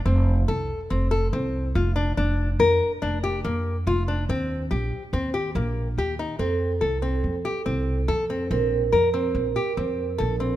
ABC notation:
X:1
M:5/4
L:1/8
Q:1/4=142
K:Fmix
V:1 name="Vibraphone"
z8 z2 | z8 z2 | z8 z2 | A8- A2 |
B8- B2 |]
V:2 name="Nylon-string guitar"
C2 A2 C A C2 F D | D2 B2 D G B,2 F D | C2 G2 C G B,2 G E | C2 A C2 G C2 A C |
C2 B C2 G C2 A C |]
V:3 name="Upright bass" clef=bass
F,,,2 C,, z F,,,2 C,,2 F,,,2 | F,,,2 F,, z F,,,2 F,,2 F,,,2 | E,,2 B,,, z E,,2 B,,,2 E,,2 | F,,2 C,,2 F,, z C,,2 F,,2 |
B,,,2 F,,2 B,,, z F,,2 B,,,2 |]